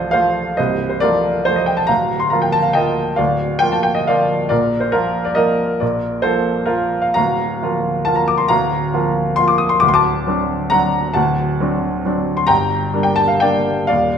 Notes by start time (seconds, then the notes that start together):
Already playing: C1 C2 F3 A3 F4 A4 C5 D5 D#5
0.11 F3 A3 F4 C5 F5
0.57 C1 C2 C5 D#5
0.90 C5
1.00 F3 A3 F4 A#4 D5
1.45 F3 A3 F4 C5
1.56 D#5
1.66 G5
1.77 A5
1.87 D1 D2 F5 A#5
2.20 C6
2.30 F3 A#3 F4 A#5
2.42 G5
2.52 A5
2.62 F5
2.73 F3 A#3 F4 D#5 G5
3.16 D1 D2 D5 F5
3.59 F3 A#3 F4 G5
3.72 A5
3.83 G5
3.95 D#5
4.07 F3 A#3 F4 D5 F5
4.49 A#1 A#2 A#4 D5
4.80 C5
4.92 F3 A#3 F4 A#4
5.25 D5
5.35 F3 A#3 F4 A#4 D#5
5.80 A#1 A#2 A#4 D5
6.22 F3 A#3 F4 A4 C5
6.66 F3 A#3 F4 A#4
7.02 F5
7.14 D1 D2 F5 A#5
7.62 F3 A#3 F4
8.05 F3 A#3 F4 A5
8.16 A#5
8.28 D6
8.38 C6
8.48 D1 D2 F5 A#5
8.94 F3 A#3 F4
9.36 F3 A#3 F4 C6
9.48 D6
9.58 D#6
9.69 C6
9.80 D1 D2 D6
9.88 C6
9.94 A5 D6
10.27 F#3 C4 D4
10.70 F#3 C4 D4 F#5 A#5
11.13 D1 D2 F#5 A5
11.60 F#3 C4 D4
12.05 F#3 C4 D4
12.37 C6
12.47 G1 G2 G5 A#5
12.94 G3 A#3 D4
13.03 G5
13.16 A5
13.28 F5
13.40 G3 A#3 D4 D5 G5
13.87 D#1 D#2 D5 F5